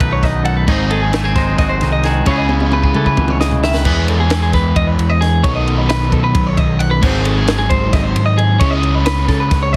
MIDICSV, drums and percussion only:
0, 0, Header, 1, 2, 480
1, 0, Start_track
1, 0, Key_signature, 4, "major"
1, 0, Tempo, 452830
1, 719, Time_signature, 7, 3, 24, 8
1, 10350, End_track
2, 0, Start_track
2, 0, Title_t, "Drums"
2, 4, Note_on_c, 9, 36, 108
2, 5, Note_on_c, 9, 51, 98
2, 110, Note_off_c, 9, 36, 0
2, 111, Note_off_c, 9, 51, 0
2, 241, Note_on_c, 9, 36, 73
2, 243, Note_on_c, 9, 51, 82
2, 253, Note_on_c, 9, 38, 37
2, 347, Note_off_c, 9, 36, 0
2, 349, Note_off_c, 9, 51, 0
2, 359, Note_off_c, 9, 38, 0
2, 480, Note_on_c, 9, 51, 80
2, 586, Note_off_c, 9, 51, 0
2, 718, Note_on_c, 9, 49, 92
2, 719, Note_on_c, 9, 36, 108
2, 824, Note_off_c, 9, 49, 0
2, 825, Note_off_c, 9, 36, 0
2, 960, Note_on_c, 9, 51, 68
2, 1066, Note_off_c, 9, 51, 0
2, 1197, Note_on_c, 9, 51, 89
2, 1206, Note_on_c, 9, 38, 105
2, 1303, Note_off_c, 9, 51, 0
2, 1312, Note_off_c, 9, 38, 0
2, 1437, Note_on_c, 9, 51, 69
2, 1439, Note_on_c, 9, 36, 83
2, 1447, Note_on_c, 9, 38, 35
2, 1543, Note_off_c, 9, 51, 0
2, 1545, Note_off_c, 9, 36, 0
2, 1553, Note_off_c, 9, 38, 0
2, 1680, Note_on_c, 9, 36, 112
2, 1680, Note_on_c, 9, 51, 98
2, 1689, Note_on_c, 9, 38, 38
2, 1786, Note_off_c, 9, 36, 0
2, 1786, Note_off_c, 9, 51, 0
2, 1795, Note_off_c, 9, 38, 0
2, 1917, Note_on_c, 9, 51, 70
2, 1926, Note_on_c, 9, 38, 38
2, 2023, Note_off_c, 9, 51, 0
2, 2032, Note_off_c, 9, 38, 0
2, 2156, Note_on_c, 9, 51, 73
2, 2166, Note_on_c, 9, 38, 36
2, 2262, Note_off_c, 9, 51, 0
2, 2272, Note_off_c, 9, 38, 0
2, 2396, Note_on_c, 9, 51, 89
2, 2401, Note_on_c, 9, 36, 106
2, 2502, Note_off_c, 9, 51, 0
2, 2507, Note_off_c, 9, 36, 0
2, 2640, Note_on_c, 9, 48, 63
2, 2746, Note_off_c, 9, 48, 0
2, 2760, Note_on_c, 9, 48, 58
2, 2866, Note_off_c, 9, 48, 0
2, 2879, Note_on_c, 9, 48, 68
2, 2985, Note_off_c, 9, 48, 0
2, 3004, Note_on_c, 9, 36, 64
2, 3110, Note_off_c, 9, 36, 0
2, 3121, Note_on_c, 9, 47, 76
2, 3227, Note_off_c, 9, 47, 0
2, 3244, Note_on_c, 9, 36, 71
2, 3350, Note_off_c, 9, 36, 0
2, 3363, Note_on_c, 9, 45, 86
2, 3365, Note_on_c, 9, 36, 80
2, 3469, Note_off_c, 9, 45, 0
2, 3471, Note_off_c, 9, 36, 0
2, 3477, Note_on_c, 9, 45, 79
2, 3583, Note_off_c, 9, 45, 0
2, 3613, Note_on_c, 9, 38, 93
2, 3719, Note_off_c, 9, 38, 0
2, 3724, Note_on_c, 9, 43, 78
2, 3830, Note_off_c, 9, 43, 0
2, 3853, Note_on_c, 9, 38, 105
2, 3959, Note_off_c, 9, 38, 0
2, 3966, Note_on_c, 9, 38, 86
2, 4072, Note_off_c, 9, 38, 0
2, 4081, Note_on_c, 9, 49, 115
2, 4085, Note_on_c, 9, 36, 120
2, 4187, Note_off_c, 9, 49, 0
2, 4191, Note_off_c, 9, 36, 0
2, 4325, Note_on_c, 9, 51, 80
2, 4431, Note_off_c, 9, 51, 0
2, 4559, Note_on_c, 9, 51, 105
2, 4569, Note_on_c, 9, 38, 109
2, 4665, Note_off_c, 9, 51, 0
2, 4675, Note_off_c, 9, 38, 0
2, 4804, Note_on_c, 9, 51, 76
2, 4806, Note_on_c, 9, 36, 85
2, 4813, Note_on_c, 9, 38, 37
2, 4910, Note_off_c, 9, 51, 0
2, 4912, Note_off_c, 9, 36, 0
2, 4919, Note_off_c, 9, 38, 0
2, 5046, Note_on_c, 9, 36, 121
2, 5047, Note_on_c, 9, 51, 101
2, 5152, Note_off_c, 9, 36, 0
2, 5153, Note_off_c, 9, 51, 0
2, 5289, Note_on_c, 9, 51, 81
2, 5395, Note_off_c, 9, 51, 0
2, 5532, Note_on_c, 9, 51, 76
2, 5542, Note_on_c, 9, 38, 38
2, 5638, Note_off_c, 9, 51, 0
2, 5648, Note_off_c, 9, 38, 0
2, 5767, Note_on_c, 9, 51, 101
2, 5768, Note_on_c, 9, 36, 120
2, 5873, Note_off_c, 9, 51, 0
2, 5874, Note_off_c, 9, 36, 0
2, 6015, Note_on_c, 9, 51, 71
2, 6121, Note_off_c, 9, 51, 0
2, 6248, Note_on_c, 9, 51, 92
2, 6258, Note_on_c, 9, 38, 107
2, 6354, Note_off_c, 9, 51, 0
2, 6364, Note_off_c, 9, 38, 0
2, 6489, Note_on_c, 9, 36, 79
2, 6489, Note_on_c, 9, 51, 78
2, 6595, Note_off_c, 9, 36, 0
2, 6595, Note_off_c, 9, 51, 0
2, 6728, Note_on_c, 9, 36, 114
2, 6729, Note_on_c, 9, 51, 105
2, 6834, Note_off_c, 9, 36, 0
2, 6835, Note_off_c, 9, 51, 0
2, 6969, Note_on_c, 9, 36, 84
2, 6970, Note_on_c, 9, 51, 87
2, 7075, Note_off_c, 9, 36, 0
2, 7076, Note_off_c, 9, 51, 0
2, 7210, Note_on_c, 9, 51, 84
2, 7316, Note_off_c, 9, 51, 0
2, 7447, Note_on_c, 9, 57, 101
2, 7449, Note_on_c, 9, 36, 104
2, 7553, Note_off_c, 9, 57, 0
2, 7555, Note_off_c, 9, 36, 0
2, 7687, Note_on_c, 9, 51, 88
2, 7793, Note_off_c, 9, 51, 0
2, 7924, Note_on_c, 9, 51, 105
2, 7933, Note_on_c, 9, 38, 113
2, 8030, Note_off_c, 9, 51, 0
2, 8039, Note_off_c, 9, 38, 0
2, 8166, Note_on_c, 9, 51, 82
2, 8167, Note_on_c, 9, 36, 83
2, 8272, Note_off_c, 9, 51, 0
2, 8273, Note_off_c, 9, 36, 0
2, 8406, Note_on_c, 9, 51, 116
2, 8407, Note_on_c, 9, 36, 111
2, 8415, Note_on_c, 9, 38, 37
2, 8512, Note_off_c, 9, 51, 0
2, 8513, Note_off_c, 9, 36, 0
2, 8521, Note_off_c, 9, 38, 0
2, 8648, Note_on_c, 9, 51, 87
2, 8754, Note_off_c, 9, 51, 0
2, 8888, Note_on_c, 9, 51, 82
2, 8994, Note_off_c, 9, 51, 0
2, 9121, Note_on_c, 9, 51, 97
2, 9124, Note_on_c, 9, 36, 103
2, 9227, Note_off_c, 9, 51, 0
2, 9230, Note_off_c, 9, 36, 0
2, 9361, Note_on_c, 9, 51, 73
2, 9467, Note_off_c, 9, 51, 0
2, 9601, Note_on_c, 9, 51, 98
2, 9610, Note_on_c, 9, 38, 113
2, 9707, Note_off_c, 9, 51, 0
2, 9716, Note_off_c, 9, 38, 0
2, 9842, Note_on_c, 9, 51, 76
2, 9843, Note_on_c, 9, 36, 80
2, 9851, Note_on_c, 9, 38, 39
2, 9948, Note_off_c, 9, 51, 0
2, 9949, Note_off_c, 9, 36, 0
2, 9957, Note_off_c, 9, 38, 0
2, 10082, Note_on_c, 9, 51, 95
2, 10083, Note_on_c, 9, 36, 110
2, 10092, Note_on_c, 9, 38, 35
2, 10188, Note_off_c, 9, 51, 0
2, 10189, Note_off_c, 9, 36, 0
2, 10198, Note_off_c, 9, 38, 0
2, 10350, End_track
0, 0, End_of_file